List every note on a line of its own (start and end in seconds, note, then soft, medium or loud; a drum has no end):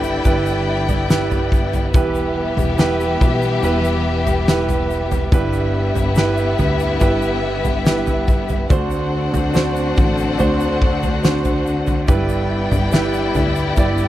0.00 0.21 G1 medium
0.00 1.96 G2 medium
0.00 1.91 D3 medium
0.00 8.66 G3 medium
0.00 5.28 B3 medium
0.00 0.24 E4 medium
0.00 1.90 E4 medium
0.00 1.91 E4 medium
0.00 0.25 G4 medium
0.00 1.96 A4 medium
0.00 0.26 B4 medium
0.00 1.90 D5 medium
0.00 1.90 G5 medium
0.00 shaker soft
0.24 1.96 G1 loud
0.24 1.05 E4 medium
0.24 1.06 G4 medium
0.24 1.06 B4 medium
0.24 kick medium
0.24 shaker medium
0.46 shaker soft
0.89 floor tom medium
0.89 shaker soft
1.09 1.89 E4 medium
1.09 1.90 G4 medium
1.09 1.90 B4 medium
1.09 snare loud
1.09 shaker medium
1.31 floor tom medium
1.31 shaker soft
1.52 kick medium
1.52 shaker soft
1.73 floor tom medium
1.73 shaker soft
1.93 2.54 E1 loud
1.93 5.29 E3 medium
1.93 3.17 E3 medium
1.93 5.28 B3 medium
1.93 2.74 E4 medium
1.93 5.28 G4 medium
1.93 5.29 G4 medium
1.93 2.75 G4 medium
1.93 2.75 B4 medium
1.93 5.28 E5 medium
1.93 kick medium
1.93 floor tom loud
1.93 shaker medium
2.15 shaker soft
2.57 3.17 E1 medium
2.57 floor tom medium
2.57 shaker medium
2.78 3.58 E4 medium
2.78 3.59 G4 medium
2.78 3.59 B4 medium
2.78 snare loud
2.78 shaker medium
3.00 shaker soft
3.21 3.60 B1 loud
3.21 kick medium
3.21 floor tom medium
3.21 shaker soft
3.42 shaker soft
3.63 5.28 E1 loud
3.63 4.43 E4 medium
3.63 4.44 G4 medium
3.63 4.44 B4 medium
3.63 shaker medium
3.84 shaker soft
4.27 floor tom medium
4.27 shaker soft
4.47 5.28 E4 medium
4.47 5.28 G4 medium
4.47 5.29 B4 medium
4.47 snare loud
4.47 shaker medium
4.69 floor tom medium
4.69 shaker soft
4.91 shaker soft
5.11 floor tom medium
5.11 shaker soft
5.31 5.92 G1 loud
5.31 6.55 G2 medium
5.31 8.66 D3 medium
5.31 8.67 B3 medium
5.31 8.66 B3 medium
5.31 8.67 E4 medium
5.31 6.12 E4 medium
5.31 8.66 G4 medium
5.31 6.13 G4 medium
5.31 6.13 B4 medium
5.31 8.66 E5 medium
5.31 kick loud
5.31 floor tom loud
5.31 shaker medium
5.53 shaker soft
5.95 6.55 G1 medium
5.95 floor tom medium
5.95 shaker medium
6.15 6.97 E4 medium
6.15 6.97 G4 medium
6.15 6.97 B4 medium
6.15 snare loud
6.15 shaker medium
6.37 shaker soft
6.59 6.98 D2 medium
6.59 floor tom medium
6.59 shaker soft
6.80 shaker soft
7.00 8.66 G1 loud
7.00 7.81 E4 medium
7.00 7.81 G4 medium
7.00 7.82 B4 medium
7.00 kick medium
7.00 shaker medium
7.22 shaker soft
7.65 floor tom medium
7.65 shaker soft
7.85 8.66 E4 medium
7.85 8.66 G4 medium
7.85 8.67 B4 medium
7.85 snare loud
7.85 shaker medium
8.07 floor tom medium
8.07 shaker soft
8.28 kick medium
8.28 shaker soft
8.49 floor tom medium
8.49 shaker soft
8.69 9.30 D2 loud
8.69 14.08 D3 medium
8.69 9.93 D3 medium
8.69 12.05 A3 medium
8.69 12.05 C4 medium
8.69 9.50 D4 medium
8.69 12.04 D4 medium
8.69 12.05 F#4 medium
8.69 9.51 F#4 medium
8.69 12.04 C5 medium
8.69 9.51 C5 medium
8.69 12.04 F#5 medium
8.69 kick loud
8.69 floor tom loud
8.69 shaker medium
8.91 shaker soft
9.33 9.93 D2 loud
9.33 floor tom medium
9.33 shaker medium
9.53 10.34 D4 medium
9.53 10.35 F#4 medium
9.53 10.35 C5 medium
9.53 snare loud
9.53 shaker medium
9.76 shaker soft
9.97 10.37 A1 medium
9.97 kick loud
9.97 floor tom medium
9.97 shaker soft
10.18 shaker soft
10.38 12.04 D2 loud
10.38 11.19 D4 medium
10.38 11.19 F#4 medium
10.38 11.20 C5 medium
10.38 floor tom medium
10.38 shaker medium
10.60 shaker soft
10.82 kick medium
11.03 floor tom medium
11.03 shaker soft
11.23 12.04 D4 medium
11.23 12.04 F#4 medium
11.23 12.04 C5 medium
11.23 snare loud
11.23 shaker medium
11.45 floor tom medium
11.45 shaker soft
11.67 shaker soft
11.87 floor tom medium
11.87 shaker soft
12.07 12.68 G1 loud
12.07 13.31 G2 medium
12.07 14.08 G3 medium
12.07 14.08 B3 medium
12.07 12.88 E4 medium
12.07 14.08 E4 medium
12.07 12.88 G4 medium
12.07 12.89 B4 medium
12.07 14.08 D5 medium
12.07 14.08 G5 medium
12.07 kick medium
12.07 floor tom loud
12.07 shaker medium
12.29 shaker soft
12.71 13.31 G1 medium
12.71 floor tom medium
12.71 shaker medium
12.92 13.73 E4 medium
12.92 13.73 G4 medium
12.92 13.73 B4 medium
12.92 snare loud
12.92 shaker medium
13.14 shaker soft
13.35 13.74 D2 medium
13.35 floor tom medium
13.35 shaker soft
13.56 shaker soft
13.77 14.08 G1 loud
13.77 14.08 E4 medium
13.77 14.08 G4 medium
13.77 14.08 D5 medium
13.77 kick medium
13.77 floor tom medium
13.77 shaker medium
13.97 shaker soft